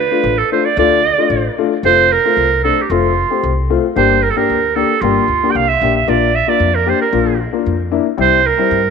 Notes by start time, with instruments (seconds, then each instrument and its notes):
0.00 clarinet B4
0.11 upright piano A3 D4 F4
0.24 upright bass A1
0.38 clarinet A4
0.52 upright piano A3 D4 F4, clarinet C5
0.65 clarinet D5
0.77 upright bass D2, upright piano A3 D4 F4, clarinet D5
1.18 upright piano A3 D4 F4
1.30 upright bass A1
1.58 upright piano A3 D4 F4
1.83 upright bass F1, upright piano A3 C4 F4, clarinet C5
2.12 clarinet A#4
2.25 upright piano A3 C4 F4
2.37 upright bass C2
2.64 upright piano A3 C4 D4, clarinet A4
2.82 clarinet G4
2.90 upright bass F1, upright piano A3 C4 F4, clarinet F4
3.30 upright piano A3 C4 G4
3.43 upright bass C2
3.70 upright piano A3 C4 F4
3.96 upright bass G1, upright piano A#3 D4 G4, clarinet C5
4.23 clarinet A#4
4.30 clarinet A4
4.36 upright piano A#3 D4 G4, clarinet A#4
4.50 upright bass D2
4.76 upright piano A#3 D4 G4, clarinet A4
5.01 upright bass G1, upright piano A#3 D4 G4, clarinet F4
5.28 upright bass D2
5.43 upright piano A#3 D4 G4
5.51 upright bass C2, clarinet G5
5.56 clarinet F5
5.69 clarinet E5
5.81 upright bass A#1, upright piano A#3 D4 G4
5.96 clarinet E5
6.07 upright bass A#1, upright piano A#3 D4 F4, clarinet D5
6.35 clarinet E5
6.47 upright piano A#3 D4 F4, clarinet D5
6.60 upright bass F2
6.75 clarinet A#4
6.86 upright piano A#3 D4 G4, clarinet C5
7.02 clarinet A#4
7.13 upright bass A#1, upright piano A#3 D4 F4
7.53 upright piano A#3 D4 F4
7.66 upright bass F2
7.91 upright piano A#3 D4 E4
8.17 upright bass C2, upright piano G3 C4 E4, clarinet C5
8.46 clarinet A#4
8.58 upright piano G3 C4 E4
8.71 upright bass G2